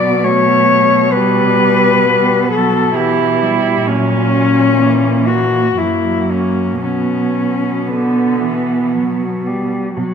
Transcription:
0.00 3.83 B2 medium
0.00 1.16 F#3 soft
0.00 0.24 B3 soft
0.00 0.25 D5 medium
0.22 1.13 A3 medium
0.22 1.15 C#5 medium
1.13 2.07 G3 medium
1.13 2.06 G3 soft
1.13 2.52 B4 medium
2.06 2.51 G3 soft
2.06 2.95 B3 soft
2.52 2.96 F#3 soft
2.52 2.98 A4 medium
2.95 3.43 E3 soft
2.95 3.88 E4 medium
2.95 3.41 G4 medium
3.42 3.89 G3 soft
3.86 5.73 A#2 soft
3.86 4.78 F#3 soft
3.86 5.29 C#4 medium
3.86 4.81 C#4 soft
4.78 5.74 E3 soft
4.78 5.76 A#3 soft
5.27 5.80 F#4 medium
5.76 6.80 F#2 soft
5.76 6.79 F#3 soft
5.76 6.82 A#3 soft
5.76 6.33 E4 soft
6.31 6.81 C#4 soft
6.81 9.72 B2 soft
6.81 7.75 F#3 soft
6.81 9.75 B3 soft
6.81 7.90 C#4 soft
7.88 8.41 D3 soft
7.88 9.47 B3 soft
8.40 8.94 E3 soft
8.93 9.48 F#3 soft
9.46 9.96 G3 soft
9.97 10.14 B2 soft
9.97 10.14 F#3 soft

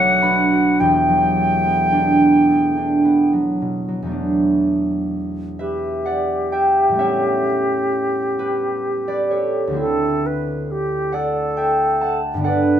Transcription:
0.00 0.85 B1 medium
0.00 1.08 F#3 soft
0.00 1.36 A3 soft
0.00 1.63 B3 soft
0.00 0.22 D4 medium
0.00 0.51 F#4 medium
0.00 0.17 A4 medium
0.00 0.85 C#5 medium
0.00 3.07 D5 medium
0.00 0.81 F#5 medium
0.00 0.63 C#6 medium
0.00 3.05 D6 medium
0.22 1.91 D4 soft
0.22 4.14 B4 medium
0.22 4.12 B5 medium
0.52 4.42 F#4 soft
0.80 4.17 E1 soft
0.80 4.01 E2 soft
0.80 4.71 G4 soft
0.80 3.32 G5 medium
0.80 4.70 G5 medium
1.09 3.32 F#3 soft
1.38 2.48 A3 soft
1.65 2.20 B3 soft
1.92 2.76 D4 soft
2.21 3.03 B3 soft
2.49 4.06 A3 soft
2.77 4.10 D4 soft
3.05 4.08 B3 soft
3.33 3.87 F#3 soft
3.62 4.18 B2 soft
3.88 4.04 F#3 soft
4.02 6.98 E2 soft
4.02 6.99 F#3 soft
4.07 6.92 A3 soft
4.07 6.94 B3 soft
4.11 7.03 D4 soft
5.59 9.75 G4 soft
5.59 8.38 B4 soft
5.59 6.52 E5 medium
6.06 7.04 D5 soft
6.06 7.03 F#5 medium
6.52 6.98 E5 soft
6.52 10.42 G5 medium
6.89 9.77 A2 soft
6.89 10.81 G3 soft
6.94 9.70 A3 soft
6.94 9.80 B3 soft
6.98 9.82 C#4 soft
6.98 9.29 C#5 soft
6.98 10.89 E5 medium
8.39 12.30 G4 soft
8.39 9.08 B4 medium
9.08 9.83 B4 soft
9.08 9.48 D5 medium
9.31 12.42 A4 soft
9.31 9.82 C#5 soft
9.67 12.44 D2 soft
9.67 12.35 D3 soft
9.72 12.80 A3 soft
9.72 12.47 C4 soft
9.76 12.48 E4 soft
9.76 10.27 A4 medium
10.26 10.72 B4 soft
10.71 11.16 G4 soft
11.12 12.20 A4 soft
11.12 12.44 D5 soft
11.12 11.88 F#5 medium
11.57 12.49 E5 soft
11.57 12.80 G5 soft
12.01 12.43 F#5 soft
12.01 12.80 A5 medium
12.34 12.80 G2 soft
12.34 12.80 D3 soft
12.39 12.80 B3 soft
12.39 12.80 D4 soft
12.44 12.80 A4 soft
12.44 12.80 B4 medium
12.44 12.80 D5 soft
12.44 12.80 F#5 medium

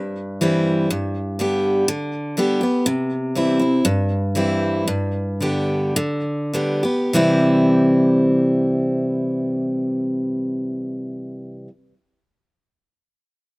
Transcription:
0.00 0.85 G2 medium
0.41 0.88 E3 medium
0.41 0.88 G3 medium
0.41 0.88 C4 medium
0.41 0.89 E4 medium
0.90 1.83 G2 medium
1.39 1.86 D3 medium
1.39 1.86 G3 medium
1.39 1.86 B3 medium
1.39 1.87 G4 medium
1.88 2.36 D3 medium
2.37 2.61 D3 medium
2.37 2.61 G3 medium
2.37 2.61 B3 medium
2.37 2.60 G4 medium
2.61 2.86 B3 soft
2.61 2.85 G4 soft
2.86 3.80 C3 medium
3.35 3.59 E3 medium
3.35 3.59 G3 medium
3.35 3.60 C4 medium
3.35 3.58 E4 medium
3.59 3.85 C4 soft
3.59 3.84 E4 medium
3.85 4.82 G2 medium
4.35 4.85 E3 medium
4.35 4.85 G3 medium
4.35 4.85 C4 medium
4.35 4.86 E4 medium
4.88 5.91 G2 medium
5.41 5.93 D3 medium
5.41 5.94 G3 medium
5.41 5.94 B3 medium
5.41 5.94 G4 medium
5.96 6.52 D3 medium
6.53 6.82 D3 medium
6.53 6.83 G3 medium
6.53 6.83 B3 medium
6.53 6.82 G4 medium
6.83 7.13 B3 soft
6.83 7.12 G4 medium
7.13 11.67 C3 medium
7.13 11.68 E3 medium
7.13 11.69 G3 medium
7.13 11.69 C4 medium
7.13 11.70 E4 medium

